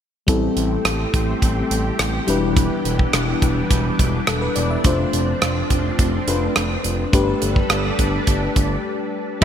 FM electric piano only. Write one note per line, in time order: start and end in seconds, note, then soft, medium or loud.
0.27 2.23 G3 medium
0.27 2.24 C4 medium
0.27 2.24 E4 medium
0.27 2.24 A4 medium
2.27 4.52 G3 medium
2.27 4.52 D4 medium
2.27 4.53 E4 medium
2.27 4.25 B4 medium
4.27 4.41 A4 medium
4.42 4.55 B4 medium
4.56 4.70 D5 medium
4.71 4.98 E5 medium
4.84 6.24 A3 medium
4.84 6.25 D4 medium
4.84 6.25 F4 medium
4.84 6.26 C5 medium
6.27 7.11 A3 soft
6.27 7.12 D4 soft
6.27 7.14 F4 soft
6.27 7.14 B4 medium
7.12 9.38 A3 medium
7.12 9.38 D4 medium
7.12 9.38 G4 medium
7.12 9.39 B4 medium
9.41 9.44 G3 medium